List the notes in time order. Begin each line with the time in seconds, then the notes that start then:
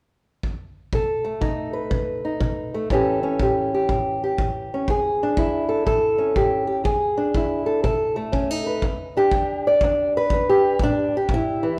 0.43 kick
0.93 B2 A4, kick
1.25 A3
1.41 B2 D#4, kick
1.73 B4
1.91 B2, kick
2.25 D#4
2.40 B2, kick
2.74 A3
2.90 A2 E3 C#4 G4 A4, kick
3.23 C#4
3.39 A2 G4, kick
3.74 G4
3.89 A2, kick
4.24 G4
4.38 A2, kick
4.74 C#4
4.88 E2 G#4, kick
5.23 D4
5.37 E2 E4, kick
5.69 A4
5.86 A2 A4, kick
6.18 C#4
6.36 A2 G4, kick
6.67 G4
6.84 E2 G#4, kick
7.17 D4
7.34 E2 E4, kick
7.66 A4
7.83 B2 A4, kick
8.16 A3
8.32 B2 C#4, kick
8.51 D#4
8.67 B4
8.82 E2, kick
9.17 D4 G4
9.31 E2, kick
9.67 D5
9.81 E2 D4, kick
10.17 B4
10.30 E2, kick
10.49 G4
10.79 A2 D4, kick
11.17 G4
11.29 A2, kick
11.34 E4
11.63 E3